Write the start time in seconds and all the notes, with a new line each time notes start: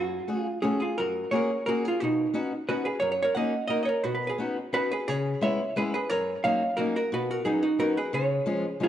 Already playing: F#2 F#4
0.28 A3 C#4 F#4 G#4
0.39 F4
0.62 A3 C#4 F#4 G#4
0.80 F4 G#4
0.98 F#2 F#4 A#4
1.31 A#3 C#4 F#4 G#4 C#5
1.35 A#4
1.66 A#3 C#4 F#4 G#4 A#4
1.85 F4 G#4
2.00 B2 D#4 F#4
2.34 B3 C#4 D#4 F#4
2.69 B3 C#4 D#4 F#4 B4
2.85 G#4 B4
3.00 F#2 A#4 C#5
3.12 C#5
3.22 A#4 C#5
3.35 A#3 C#4 D#4 F#4 D#5 F#5
3.68 A#3 C#4 D#4 F#4 A#4 D#5
3.83 C#5 D#5
3.89 A#4
4.04 B2 F#4 B4
4.15 B4
4.27 G#4 B4
4.38 B3 C#4 D#4 F#4
4.73 B3 C#4 D#4 F#4 B4
4.92 G#4 B4
5.08 C#3 G#4 C#5
5.41 G#3 B3 C#4 E4 C#5 E5
5.76 G#3 B3 C#4 E4 G#4 B4
5.94 G#4 B4
6.10 F#2 A#4 C#5
6.44 F#3 A#3 C#4 D#4 C#5 F5
6.77 F#3 A#3 C#4 D#4 F#4 A#4
6.96 F#4 A#4
7.12 B2 F#4 B4
7.31 F#4 A#4
7.45 F#3 B3 C#4 D#4 G#4
7.62 D#4 F#4
7.79 F#3 B3 C#4 D#4 F#4 A#4
7.97 G#4 B4
8.13 C#3 G#4 C#5
8.46 F3 G#3 C#4 F4
8.80 F3 G#3 C#4 F4
8.84 G#4